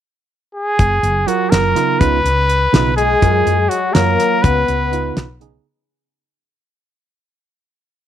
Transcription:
0.55 G#4
0.79 F#1, kick, closed hi-hat
1.03 F#1, closed hi-hat
1.27 F#3 F4 F#4 A#4, closed hi-hat
1.50 F#1 A#4, snare, closed hi-hat
1.75 C#3 B3 D#4 F4, snare, closed hi-hat
2.00 C#2 C#3 B3 D#4 F4 B4, kick, closed hi-hat
2.24 C#2, closed hi-hat
2.49 closed hi-hat
2.73 B1 C#3 B3 D#4 F4, snare, closed hi-hat
2.97 G#3 G#4, closed hi-hat
3.21 F#2 F#3 F4 A#4, kick, closed hi-hat
3.46 F#2, closed hi-hat
3.69 F#3 F#4, closed hi-hat
3.92 F#2 F#3 A#3 F4 A#4 C#5, snare, closed hi-hat
4.20 snare, closed hi-hat
4.42 C#2 B3 B4, kick, closed hi-hat
4.68 C#2, closed hi-hat
4.91 C#3 B3 D#4 F4, closed hi-hat
5.16 B1, snare, closed hi-hat
5.40 C#3 B3 D#4 G#4, closed hi-hat

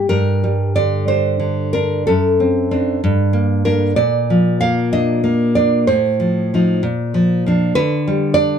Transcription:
0.09 G2 A#4
0.44 G3
0.75 D3 D5
1.08 D4 C5
1.40 D3
1.73 D4 A#4
2.07 F#2 A4
2.40 C4
2.71 C4 D4
3.04 G2
3.33 A#3
3.65 A#3 D4 A#4
3.96 A#2 D5
4.30 F3
4.61 A#3 F5
4.93 D4 D#5
5.24 A#3
5.55 D4 D5
5.87 A2 C5
6.20 F3
6.54 F3 D#4
6.83 A#2
7.14 F3
7.46 F3 D4
7.75 D3 B4
8.07 G3
8.34 D4 D5

